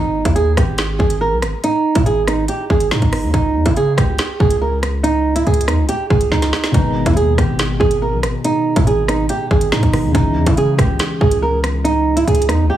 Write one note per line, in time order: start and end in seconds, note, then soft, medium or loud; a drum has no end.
0.00 0.16 G#1 loud
0.00 0.24 D#4 loud
0.15 0.25 G1 medium
0.25 0.56 D#2 loud
0.25 0.34 E4 medium
0.25 kick medium
0.25 closed hi-hat medium
0.36 0.52 G#4 medium
0.36 closed hi-hat medium
0.57 0.98 G#1 loud
0.57 0.97 G4 medium
0.57 kick loud
0.57 cross-stick medium
0.57 closed hi-hat medium
0.78 snare loud
0.78 closed hi-hat medium
0.99 1.33 G#1 loud
0.99 1.15 G#4 medium
0.99 kick medium
1.10 closed hi-hat medium
1.21 1.37 A#4 medium
1.32 1.44 B1 loud
1.42 1.52 G#1 loud
1.42 cross-stick medium
1.42 closed hi-hat medium
1.64 1.94 D#4 loud
1.64 closed hi-hat medium
1.95 2.06 G#2 loud
1.95 2.04 E4 medium
1.95 kick loud
1.95 closed hi-hat medium
2.06 2.47 G#1 loud
2.06 2.22 G#4 medium
2.06 closed hi-hat medium
2.27 2.44 D#4 medium
2.27 cross-stick medium
2.27 closed hi-hat medium
2.48 2.65 G4 medium
2.48 closed hi-hat medium
2.70 2.90 G#1 loud
2.70 2.86 G#4 medium
2.70 kick medium
2.80 closed hi-hat medium
2.91 3.01 G#2 loud
2.91 3.31 D#4 medium
2.91 snare loud
3.02 3.25 G1 loud
3.02 kick medium
3.02 closed hi-hat soft
3.13 cross-stick medium
3.13 closed hi-hat medium
3.13 open hi-hat medium
3.23 3.33 D#2 loud
3.34 3.57 C#2 loud
3.34 3.64 D#4 loud
3.34 kick loud
3.34 closed hi-hat medium
3.55 3.65 E2 loud
3.66 3.96 C#3 loud
3.66 3.74 E4 medium
3.66 kick medium
3.66 closed hi-hat medium
3.76 3.93 G#4 medium
3.76 closed hi-hat medium
3.97 4.18 C#2 loud
3.97 4.37 G4 medium
3.97 kick loud
3.97 cross-stick loud
3.97 closed hi-hat medium
4.18 snare loud
4.18 closed hi-hat medium
4.40 5.43 C#2 loud
4.40 4.56 G#4 medium
4.40 kick medium
4.50 closed hi-hat medium
4.62 4.78 A#4 medium
4.83 cross-stick medium
4.83 closed hi-hat medium
5.03 5.34 D#4 loud
5.03 closed hi-hat medium
5.36 5.44 E4 medium
5.36 closed hi-hat medium
5.47 5.69 C#2 loud
5.47 5.63 G#4 medium
5.47 closed hi-hat soft
5.54 closed hi-hat medium
5.61 closed hi-hat medium
5.68 5.80 E2 loud
5.68 5.84 D#4 medium
5.68 cross-stick loud
5.68 closed hi-hat medium
5.79 5.89 C#2 loud
5.89 6.05 G4 medium
5.89 closed hi-hat medium
6.10 6.31 C#2 loud
6.10 6.26 G#4 medium
6.10 kick medium
6.21 closed hi-hat medium
6.31 6.52 C#2 loud
6.31 6.72 D#4 medium
6.31 snare medium
6.42 snare medium
6.42 closed hi-hat medium
6.53 snare medium
6.64 snare medium
6.71 6.97 G#1 loud
6.71 9.88 B2 medium
6.71 9.89 D#3 medium
6.71 9.90 G#3 medium
6.71 7.05 D#4 loud
6.71 kick loud
6.71 closed hi-hat medium
6.76 9.90 D#4 medium
6.76 9.91 B4 medium
6.96 7.06 G1 loud
7.06 7.37 D#2 loud
7.06 7.14 E4 medium
7.06 kick loud
7.06 closed hi-hat medium
7.16 7.33 G#4 medium
7.16 closed hi-hat medium
7.38 7.79 G#1 loud
7.38 7.78 G4 medium
7.38 kick loud
7.38 cross-stick medium
7.38 closed hi-hat medium
7.59 snare loud
7.59 closed hi-hat medium
7.80 8.14 G#1 loud
7.80 7.96 G#4 medium
7.80 kick medium
7.91 closed hi-hat medium
8.02 8.18 A#4 medium
8.13 8.25 B1 loud
8.23 8.33 G#1 loud
8.23 cross-stick medium
8.23 closed hi-hat medium
8.45 8.75 D#4 loud
8.45 closed hi-hat medium
8.76 8.87 G#2 loud
8.76 8.84 E4 medium
8.76 kick medium
8.76 closed hi-hat medium
8.87 9.28 G#1 loud
8.87 9.03 G#4 medium
8.87 closed hi-hat medium
9.08 9.25 D#4 medium
9.08 cross-stick medium
9.08 closed hi-hat medium
9.29 9.46 G4 medium
9.29 closed hi-hat medium
9.51 9.71 G#1 loud
9.51 9.67 G#4 medium
9.51 kick medium
9.61 closed hi-hat medium
9.72 9.82 G#2 loud
9.72 10.12 D#4 medium
9.72 snare loud
9.83 10.06 G1 loud
9.83 kick medium
9.83 closed hi-hat soft
9.92 10.14 B2 medium
9.92 10.14 D#3 soft
9.92 10.13 G#3 soft
9.92 10.15 D#4 soft
9.92 10.16 G#4 medium
9.92 cross-stick medium
9.92 closed hi-hat medium
9.92 open hi-hat medium
10.04 10.14 D#2 loud
10.12 10.37 C#2 loud
10.12 12.77 C#3 medium
10.12 12.77 E3 medium
10.12 12.77 G#3 medium
10.12 10.45 D#4 loud
10.12 kick loud
10.12 closed hi-hat medium
10.16 12.77 D#4 medium
10.36 10.46 E2 loud
10.46 10.77 C#3 loud
10.46 10.55 E4 medium
10.46 kick medium
10.46 closed hi-hat medium
10.57 10.74 G#4 medium
10.57 closed hi-hat medium
10.78 10.99 C#2 loud
10.78 11.18 G4 medium
10.78 kick loud
10.78 cross-stick medium
10.78 closed hi-hat medium
10.99 snare loud
10.99 closed hi-hat medium
11.21 12.23 C#2 loud
11.21 11.37 G#4 medium
11.21 kick medium
11.31 closed hi-hat medium
11.42 11.59 A#4 medium
11.64 cross-stick medium
11.64 closed hi-hat medium
11.84 12.15 D#4 loud
11.84 closed hi-hat medium
12.16 12.25 E4 medium
12.16 closed hi-hat medium
12.27 12.50 C#2 loud
12.27 12.44 G#4 medium
12.27 closed hi-hat soft
12.35 closed hi-hat medium
12.42 closed hi-hat medium
12.48 12.66 E2 loud
12.48 12.65 D#4 medium
12.48 cross-stick medium
12.48 closed hi-hat medium
12.65 12.70 C#2 loud
12.70 12.77 G4 medium